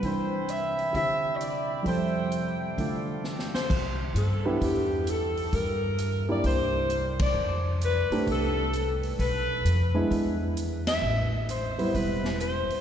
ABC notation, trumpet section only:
X:1
M:4/4
L:1/8
Q:"Swing" 1/4=131
K:C
V:1 name="Trumpet section"
[Egb]8 | [Aeg]4 [Adf]4 | z8 | z8 |
z8 | z8 | z8 |]